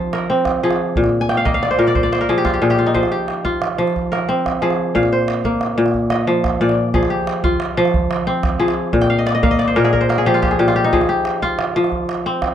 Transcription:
Already playing: kora F3 C4 D4 D#4 F4 G4 C5
0.13 kora A#4, calabash click
0.21 calabash click
0.30 kora C4
0.45 calabash thump, calabash click
0.63 kora F3 G#4
0.71 calabash click
0.96 kora A#2, calabash thump
1.04 calabash click
1.21 kora G#5
1.29 kora G5, calabash click
1.37 kora F5
1.45 kora A#3 D#5, calabash thump, calabash click
1.54 kora F5
1.63 kora D5, calabash click
1.70 kora C5, calabash click
1.79 kora A#2 A#4, calabash click
1.87 kora D5, calabash click
1.95 kora C5, calabash thump
2.03 kora D5
2.12 kora C5, calabash click
2.21 kora A#4, calabash click
2.29 kora F3 G#4
2.38 kora G4
2.45 kora F4, calabash thump, calabash click
2.54 kora G4
2.62 kora A#2 G#4
2.70 kora G4, calabash click
2.78 kora F4
2.86 kora D#4
2.94 kora F3 C5, calabash thump
3.03 calabash click
3.12 kora G4
3.28 calabash click
3.45 kora F4, calabash thump, calabash click
3.62 calabash click
3.70 calabash click
3.78 kora F3, calabash click
3.87 calabash click
3.96 calabash thump
4.12 kora A#4, calabash click
4.21 calabash click
4.29 kora C4
4.46 calabash thump, calabash click
4.62 kora F3 G#4
4.70 calabash click
4.95 kora A#2 F5, calabash thump, calabash click
5.03 calabash click
5.12 kora C5
5.28 calabash click
5.44 kora A#3, calabash thump, calabash click
5.61 calabash click
5.78 kora A#2, calabash click
5.86 calabash click
5.94 calabash thump
6.03 calabash click
6.10 kora D#5, calabash click
6.27 kora F3
6.44 calabash thump, calabash click
6.61 kora A#2 D5, calabash click
6.69 calabash click
6.78 calabash click
6.94 kora F3 G#4, calabash thump
7.03 calabash click
7.10 kora G4
7.27 calabash click
7.44 kora F4, calabash thump, calabash click
7.60 calabash click
7.69 calabash click
7.77 kora F3, calabash click
7.85 calabash click
7.94 calabash thump
8.11 calabash click
8.19 calabash click
8.27 kora C4
8.43 calabash thump, calabash click
8.60 kora F3 G#4
8.68 calabash click
8.93 kora A#2, calabash thump
9.01 kora G5, calabash click
9.10 kora F5
9.18 kora D#5
9.26 kora D5, calabash click
9.35 kora D#5
9.43 kora A#3 F5, calabash thump, calabash click
9.51 kora D#5
9.59 kora D5, calabash click
9.68 kora C5, calabash click
9.76 kora A#2 A#4, calabash click
9.84 kora G#4, calabash click
9.93 kora A#4, calabash thump
10.01 kora C5
10.09 kora A#4, calabash click
10.18 kora G#4, calabash click
10.26 kora F3 G4
10.34 kora F4
10.42 kora G4, calabash thump, calabash click
10.51 kora G#4
10.59 kora A#2 G4
10.68 kora F4, calabash click
10.76 kora G4
10.84 kora D#4
10.93 kora F3 G#4, calabash thump
11.01 calabash click
11.09 kora G4
11.25 calabash click
11.42 kora F4, calabash thump, calabash click
11.59 calabash click
11.67 calabash click
11.76 kora F3, calabash click
11.84 calabash click
11.92 calabash thump
12.09 calabash click
12.17 calabash click
12.26 kora C4
12.42 calabash thump, calabash click

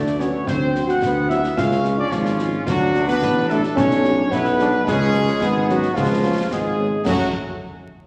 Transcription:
Already playing: tuba D2, trombone section A3, euphonium D4, trumpet section D5
0.07 snare
0.19 french horn section F#3 B3 F#4, trombone section B3, euphonium C#4, trumpet section C#5, snare
0.46 tuba D2, euphonium C4, trombone section C4, trumpet section C5, concert bass drum, snare
0.75 french horn section F#3 C4 F#4, snare
0.87 euphonium F#4, trumpet section F#5, snare
1.02 tuba D2, trombone section B3, concert bass drum, snare
1.28 french horn section F#3 C4 F#4, euphonium E4, trumpet section E5, snare
1.44 snare
1.56 tuba C#2, trombone section C#4, euphonium F4, trumpet section F5, concert bass drum, snare
1.72 snare
1.84 french horn section G#3 C#4 F4, snare
1.98 euphonium D4, trumpet section D5
2.10 tuba G#1, euphonium F3, trumpet section F4, concert bass drum, snare
2.25 snare
2.38 french horn section G#3 C#4 F4, snare
2.65 tuba D2, euphonium F#3, trombone section D4, trumpet section F#4, concert bass drum, snare, crash
2.95 french horn section F#3 A3 D4, snare
3.07 euphonium B3, trumpet section B4, snare
3.22 tuba A1, concert bass drum, snare
3.49 french horn section F#3 A3 D4, euphonium A3, trumpet section A4, snare
3.63 snare
3.76 tuba B1, euphonium C#4, trumpet section C#5, concert bass drum, snare
3.91 snare
4.04 french horn section F#3 G#3 D4, snare
4.31 tuba B1, euphonium B3, trombone section E4, trumpet section B4, concert bass drum, snare
4.45 snare
4.59 french horn section F#3 G#3 D4, trombone section D4, snare
4.85 tuba C#2, euphonium G#3, trombone section C#4, trumpet section G#4, concert bass drum, snare
5.13 french horn section F#3 B3 C#4, snare
5.28 snare
5.41 tuba G#1, trombone section B3, concert bass drum, snare
5.68 french horn section F#3 B3 C#4, euphonium F#3, trumpet section F#4, snare
5.83 snare
5.94 tuba C#2, euphonium F3, trombone section G#3, trumpet section F4, concert bass drum, snare
6.22 french horn section G#3 B3 C#4, trombone section C#4
6.51 tuba G#1, euphonium G#3, trombone section B3, trumpet section G#4, concert bass drum, snare
6.77 french horn section G#3 B3 C#4
7.05 tuba F#2, euphonium F#3, french horn section F#3 A3 C#4, trombone section F#3 A3, trumpet section F#4, concert bass drum, snare, crash

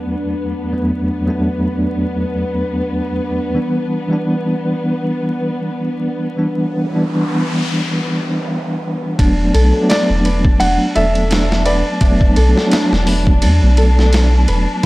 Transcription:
Already playing: tine electric piano E2 F#3 A3 B3 D4, string section B3, synth drone D4
0.72 tine electric piano E2 F#3 A3 B3 D4
1.26 tine electric piano E2 F#3 A3 B3
1.30 tine electric piano D4
3.54 tine electric piano E3 G3 B3 D4
4.09 tine electric piano E3 G3 B3
4.13 tine electric piano D4
6.36 tine electric piano E3 G3 B3 D4, noise sweep
6.90 tine electric piano E3 G3 B3
6.95 tine electric piano D4
9.18 sub bass E1, tine electric piano F#3 A3 B3 D4, string section D4, nylon-string guitar D4, kick, ride
9.54 sub bass B1, nylon-string guitar A4, ride
9.73 tine electric piano F#3 A3 B3
9.77 tine electric piano D4
9.89 nylon-string guitar D4, felt piano D5, snare, ride
10.10 sub bass E1
10.25 nylon-string guitar B4, ride
10.45 kick
10.60 sub bass E1, nylon-string guitar D4, felt piano F#5, ride
10.95 sub bass E1, nylon-string guitar A4, felt piano E5, ride
11.15 ride
11.30 nylon-string guitar D4, snare, ride
11.52 snare
11.65 nylon-string guitar B4, felt piano D5, ride
12.01 sub bass E1, tine electric piano F#3 A3 B3 D4, nylon-string guitar D4, kick, ride
12.21 kick
12.36 sub bass B1, nylon-string guitar A4, ride
12.55 tine electric piano F#3 A3 B3, snare
12.60 tine electric piano D4
12.71 nylon-string guitar D4, snare, ride
12.92 sub bass E1, snare
13.07 nylon-string guitar B4, open hi-hat
13.27 kick
13.42 sub bass E2, nylon-string guitar D4, ride
13.63 sub bass B1
13.77 nylon-string guitar A4, ride
13.99 snare
14.13 nylon-string guitar D4, snare, ride
14.48 sub bass E1, nylon-string guitar B4, ride

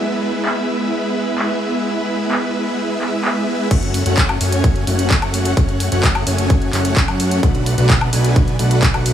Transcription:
0.00 supersaw synth G#3 B3 E4 B4 E5
0.45 clap
1.38 clap
2.31 clap
3.01 clap
3.25 clap
3.71 analog synth bass F#1, supersaw synth A3 C#4 F#4 C#5 F#5, kick, closed hi-hat, crash
3.83 closed hi-hat
3.94 open hi-hat
4.06 analog synth bass F#1, supersaw synth A3 C#4 F#4 C#5 F#5, closed hi-hat
4.18 kick, clap, closed hi-hat
4.29 closed hi-hat, high woodblock
4.41 analog synth bass F#1, supersaw synth A3 C#4 F#4 C#5 G#5, open hi-hat
4.52 closed hi-hat
4.64 kick, closed hi-hat
4.76 closed hi-hat
4.87 analog synth bass F#1, supersaw synth A3 C#4 F#4 C#5 F#5, open hi-hat
4.99 closed hi-hat
5.11 kick, clap, closed hi-hat
5.22 analog synth bass F#1, supersaw synth A3 C#4 F#4 C#5 F#5, closed hi-hat, high woodblock
5.34 open hi-hat
5.45 closed hi-hat
5.57 analog synth bass F#1, supersaw synth A3, kick, closed hi-hat
5.69 closed hi-hat
5.80 open hi-hat
5.92 analog synth bass F#1, supersaw synth A3 C#4 F#4 C#5 F#5, closed hi-hat
6.04 kick, clap, closed hi-hat
6.15 closed hi-hat, high woodblock
6.27 analog synth bass F#1, supersaw synth A3 C#4 F#4 C#5 G#5, open hi-hat
6.38 closed hi-hat
6.50 kick, closed hi-hat
6.62 closed hi-hat
6.73 analog synth bass F#1, supersaw synth A3 C#4 F#4 C#5 F#5, clap, open hi-hat
6.85 closed hi-hat
6.97 kick, clap, closed hi-hat
7.08 analog synth bass F#2, supersaw synth A3 C#4 F#4 C#5 F#5, closed hi-hat, high woodblock
7.20 open hi-hat
7.31 closed hi-hat
7.43 analog synth bass B1, supersaw synth A3 D4 F#4 B4 F#5, kick, closed hi-hat
7.55 closed hi-hat
7.66 open hi-hat
7.78 analog synth bass B1, supersaw synth A3 D4 F#4 B4 F#5, closed hi-hat
7.90 kick, clap, closed hi-hat
8.01 closed hi-hat, high woodblock
8.13 analog synth bass B1, supersaw synth A3 D4 F#4 B4 G#5, open hi-hat
8.24 closed hi-hat
8.36 kick, closed hi-hat
8.48 closed hi-hat
8.59 analog synth bass B1, supersaw synth A3 D4 F#4 B4 F#5, open hi-hat
8.71 closed hi-hat
8.83 kick, clap, closed hi-hat
8.94 analog synth bass B1, supersaw synth A3 D4 F#4 B4 F#5, closed hi-hat, high woodblock
9.06 open hi-hat

